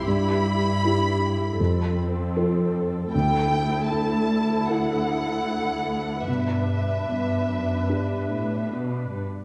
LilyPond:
<<
  \new Staff \with { instrumentName = "Violin section" } { \time 4/4 \key g \major \tempo 4 = 77 b''2~ b''8 r4. | g''4 a''4 fis''2 | e''2. r4 | }
  \new Staff \with { instrumentName = "Viola section" } { \time 4/4 \key g \major << { g'2 a'2~ | a'1 | b'2.~ b'8. r16 | } \\ { e'2 c'2 | e'1 | d'2.~ d'8. r16 | } >> }
  \new Staff \with { instrumentName = "Felt piano" } { \time 4/4 \key g \major g,4 <e' g'>4 f,4 <f' a'>4 | d,4 a4 <e' a'>2 | b,4 b4 <d' g'>2 | }
  \new Staff \with { instrumentName = "Cello section" } { \clef bass \time 4/4 \key g \major g,2 f,2 | d,1 | g,4 g,8 fis,8 g,8 a,8 b,8 g,8 | }
>>